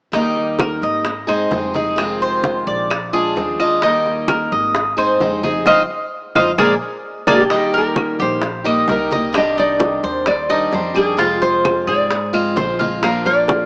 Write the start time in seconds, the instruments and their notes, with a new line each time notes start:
0.12 upright bass D#2, steel-string acoustic guitar D#3 G3 A#3 D#4, cuban tres D#4, high bongo, high conga
0.16 steel-string acoustic guitar G4
0.36 high bongo, high conga
0.59 cuban tres A#4, high bongo, high conga, claves
0.82 upright bass G#1, cuban tres D#5, high bongo, high conga
1.05 muted steel-string acoustic guitar stroke, high bongo, high conga
1.27 steel-string acoustic guitar G#3 C4 D#4 G#4, cuban tres C5, high conga, claves
1.51 upright bass F1, steel-string acoustic guitar G#3 C4 D#4 G#4, high bongo, low bongo, high conga
1.74 steel-string acoustic guitar G#3 C4 D#4 G#4, cuban tres G#4, high bongo, high conga
1.96 steel-string acoustic guitar C3 D#3 G#3 C4 F4, high bongo, high conga, claves
2.21 cuban tres C5, high bongo, high conga
2.44 high bongo, high conga
2.67 upright bass A#1, cuban tres D5, high bongo, high conga
2.90 muted steel-string acoustic guitar stroke, high bongo, high conga, claves
3.13 steel-string acoustic guitar G#3 D4 F4, cuban tres G#4, high conga
3.36 upright bass D#2, steel-string acoustic guitar F3 G#3 D4 F4, high bongo, low bongo, high conga
3.59 steel-string acoustic guitar G#3 D4 F4, cuban tres D#5, high bongo, high conga, claves
3.82 steel-string acoustic guitar D#3 G3 A#3 D#4 G4, cuban tres D#4, high bongo, high conga
4.06 high bongo, high conga
4.28 cuban tres A#4, high bongo, high conga, claves
4.52 upright bass G#1, cuban tres D#5, high bongo, high conga
4.75 muted steel-string acoustic guitar stroke, high bongo, high conga
4.97 steel-string acoustic guitar G#3 C4 D#4 G#4, cuban tres C5, high conga, claves
5.20 upright bass F1, steel-string acoustic guitar G#3 C4 D#4 G#4, high bongo, low bongo, high conga
5.43 steel-string acoustic guitar G#3 C4 D#4 G#4, cuban tres G#4, high bongo, high conga
5.66 upright bass F2, steel-string acoustic guitar C4 D#4 F4, cuban tres C5 D#5 F5, low bongo, high conga, claves
6.35 upright bass F2, steel-string acoustic guitar C4 D#4 F4, cuban tres C5 D#5 F5, low bongo, high conga, claves
6.58 upright bass A#1, steel-string acoustic guitar G#3 A#3 D4, cuban tres G#4 A#4 D5, low bongo, high conga, claves
7.27 upright bass A#1, steel-string acoustic guitar G#3 A#3 D4, nylon-string guitar G4, cuban tres G#4 A#4 D5, low bongo, high conga, claves
7.50 steel-string acoustic guitar D#3 G3 A#3 D#4 G4, cuban tres D#4, high bongo, high conga
7.73 cuban tres A#4, high bongo, high conga
7.78 nylon-string guitar A#4
7.96 high bongo, high conga, claves
8.19 upright bass A#1, cuban tres G4, nylon-string guitar C5, high bongo, high conga
8.42 muted steel-string acoustic guitar stroke, high bongo, high conga
8.64 steel-string acoustic guitar G3 A#3 D#4 G4, cuban tres D#5, high conga, claves
8.88 upright bass C2, steel-string acoustic guitar G3 A#3 D#4 G4, cuban tres A#4, nylon-string guitar A#4, high bongo, low bongo, high conga
9.10 steel-string acoustic guitar G3 A#3 D#4 G4, cuban tres D#5, high bongo, high conga
9.32 steel-string acoustic guitar C3 D#3 G3 D4 G4, cuban tres G4, high bongo, high conga, claves
9.38 nylon-string guitar D#5
9.57 cuban tres D#4, nylon-string guitar D5, high bongo, high conga
9.80 high bongo, high conga
10.03 upright bass D#2, cuban tres C5, high bongo, high conga
10.26 nylon-string guitar D5, muted steel-string acoustic guitar stroke, high bongo, high conga, claves
10.49 steel-string acoustic guitar D#3 G3 D4 G4, cuban tres D#4, high conga
10.71 upright bass F2, steel-string acoustic guitar D#3 G3 D4 G4, nylon-string guitar C5, high bongo, low bongo, high conga
10.94 steel-string acoustic guitar D#3 G3 D4 G4, cuban tres G#4, nylon-string guitar G#4, high bongo, high conga, claves
11.17 steel-string acoustic guitar C3 F3 G#3 C4 F4, cuban tres F4, high bongo, high conga
11.42 cuban tres C5, nylon-string guitar C5, high bongo, high conga
11.65 high bongo, high conga, claves
11.87 upright bass G#2, cuban tres G#4, nylon-string guitar D5, high bongo, high conga
12.10 muted steel-string acoustic guitar stroke, high bongo, high conga
12.33 steel-string acoustic guitar F3 G#3 C4 F4, cuban tres F5, high conga, claves
12.56 upright bass A#1, steel-string acoustic guitar F3 G#3 C4 F4, cuban tres C5, nylon-string guitar C5, high bongo, low bongo, high conga
12.79 steel-string acoustic guitar F3 G#3 C4 F4, cuban tres F5, high bongo, high conga
13.02 steel-string acoustic guitar F3 A#3 D4 F4, cuban tres A#4, nylon-string guitar F5, high bongo, high conga, claves
13.25 nylon-string guitar D5, cuban tres F5, high bongo, high conga
13.48 high bongo, high conga